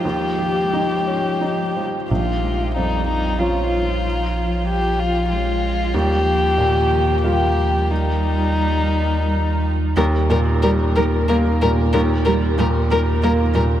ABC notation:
X:1
M:3/4
L:1/16
Q:1/4=92
K:Ebmix
V:1 name="Violin"
G8- G2 z2 | F4 E2 E2 F4- | F4 G2 F2 F4 | G8 G4 |
E8- E2 z2 | B2 B2 B2 B2 B2 B2 | B2 B2 B2 B2 B2 B2 |]
V:2 name="Ambient pad"
[G,Fe]12 | [F,Fd]12- | [F,Fd]12 | [G,FB]12- |
[G,FB]12 | [B,GB]12- | [B,GB]12 |]
V:3 name="Marimba"
z12 | z12 | z12 | z12 |
z12 | E G B E z B E B z E z2 | E G B E z B E B z E z2 |]
V:4 name="Cello" clef=bass
F,8- F,2 z2 | F,2 A,2 G,4 F,4- | F,8 A,4 | G,2 F,2 E,4 E,2 F,2 |
G,8- G,2 z2 | G,2 G,2 G,2 G,2 G,2 G,2 | G,2 G,2 G,2 G,2 G,2 G,2 |]
V:5 name="Upright piano" clef=bass
E,,2 G2 E2 D2 E2 F,2 | B,,,4 F,,4 [F,DF]4- | [F,DF]12 | E,,4 B,,4 [G,B,F]4- |
[G,B,F]12 | E,,2 B,,2 G,2 B2 B,2 B,,2 | E,,2 G,2 B,,2 B2 B,2 B,,2 |]
V:6 name="Sub bass" clef=bass
z12 | B,,,12- | B,,,12 | E,,12- |
E,,12 | E,,12- | E,,12 |]